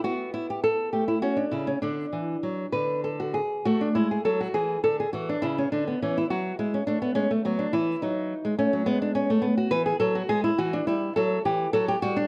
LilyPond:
\new Staff \with { instrumentName = "Nylon-string guitar" } { \time 6/8 \key d \major \tempo 4. = 69 << { fis'8 e'16 g'16 a'8 g'16 e'16 fis'16 d'16 e'16 cis'16 | d'4. b'8 a'16 fis'16 gis'8 | \key e \mixolydian fis'16 d'16 e'16 gis'16 a'16 fis'16 gis'8 a'16 gis'16 fis'16 d'16 | e'16 cis'16 d'16 b16 cis'16 e'16 fis'8 e'16 cis'16 d'16 b16 |
cis'16 a16 b16 d'16 e'8 dis'4 cis'8 | b16 d'16 cis'16 a16 b16 fis'16 b'16 gis'16 a'16 fis'16 gis'16 e'16 | \key e \dorian fis'16 d'16 e'8 a'8 g'8 a'16 g'16 fis'16 d'16 | } \\ { b4. a8 cis'8 cis8 | d8 e8 fis8 d4. | a8 gis8 fis8 e8 d8 e8 | cis8 d8 e8 fis8 gis8 a8 |
gis8 fis8 e8 fis8. gis16 a16 fis16 | gis4. e8 fis8 gis8 | e8 g8 fis8 e8 fis8 g8 | } >> }